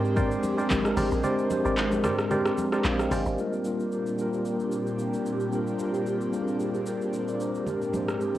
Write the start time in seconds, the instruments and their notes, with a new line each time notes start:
Already playing: log drum bass G#2, tine electric piano G#3 C4 D4 G4 A#4, analog synth pad G#3 C4 G4
0.05 shaker
0.15 tine electric piano G#3 C4 D4 G4, synth stab G4 A#4 C5 D5, kick, low conga, shaker
0.19 tine electric piano C5
0.31 shaker
0.43 high conga, shaker
0.57 tine electric piano G#3 C4 D4 G4, synth stab G4 A#4 C5 D5, shaker
0.61 tine electric piano A#4
0.70 log drum bass G#1, kick, clap, high conga, shaker
0.84 tine electric piano G#3 C4 D4 G4, cross-stick, shaker
0.88 tine electric piano A#4
0.97 log drum bass G#1, synth stab G4 A#4 C5 D5, open hi-hat, high conga, low conga, shaker
1.11 log drum bass A#1, shaker
1.23 tine electric piano G#3 C4 D4 G4 C5, synth stab G4 A#4 C5 D5, low conga, shaker
1.39 shaker
1.49 tine electric piano G#3 C4 D4 G4 C5, high conga, shaker
1.65 log drum bass G#1, synth stab G4 A#4 C5 D5, shaker
1.77 clap, shaker
1.91 tine electric piano G#3 C4 D4 G4 A#4, high conga, shaker
2.04 log drum bass G#2, synth stab G4 A#4 C5 D5, cross-stick, low conga, shaker
2.19 cross-stick, shaker
2.30 tine electric piano G#3 C4 D4 G4 A#4, synth stab G4 A#4 C5 D5, low conga, shaker
2.45 cross-stick, shaker
2.58 high conga, shaker
2.71 tine electric piano G#3 C4 D4 G4, synth stab G4 A#4 C5 D5, cross-stick, shaker
2.75 tine electric piano C5
2.84 log drum bass A#1, tine electric piano D5 F5, clap, high conga, shaker
2.99 tine electric piano D#5 G5, cross-stick, shaker
3.11 log drum bass G#1, synth stab G4 A#4 C5 D5, tine electric piano G#5, open hi-hat, high conga, low conga, shaker
3.26 log drum bass G#1, tine electric piano C5 D#5, shaker
3.37 analog synth pad A#2 A#3 C4 D4 G4, tine electric piano G3 A#3 D4 F4 A#4, shaker
3.53 shaker
3.63 tine electric piano G3 A#3 D4 F4, shaker
3.67 tine electric piano A#4
3.80 shaker
3.92 shaker
4.06 shaker
4.17 tine electric piano G3 A#3 D4 F4, shaker
4.21 tine electric piano A#4
4.33 shaker
4.45 shaker
4.60 shaker
4.72 shaker
4.87 shaker
4.99 shaker
5.14 shaker
5.26 shaker
5.40 shaker
5.51 tine electric piano G3 A#3 D4 F4 A#4, shaker
5.67 shaker
5.78 tine electric piano G3 A#3 D4 F4, shaker
5.82 tine electric piano A#4
5.94 shaker
6.06 shaker
6.21 shaker
6.32 tine electric piano G3 A#3 D4 F4, shaker
6.36 tine electric piano G#4
6.42 tine electric piano A#4
6.48 shaker
6.60 shaker
6.74 shaker
6.86 tine electric piano G4 A#4, shaker
7.01 shaker
7.13 tine electric piano C5, shaker
7.28 tine electric piano A#4 D5, shaker
7.40 tine electric piano C5, shaker
7.55 tine electric piano G4 A#4, shaker
7.66 analog synth pad G#2 G#3 G4, tine electric piano G#3 C4 D4 G4, low conga, shaker
7.70 tine electric piano A#4
7.82 shaker
7.92 tine electric piano G#3 C4 D4 G4 C5, high conga, shaker
8.08 cross-stick, shaker
8.21 shaker
8.35 high conga, shaker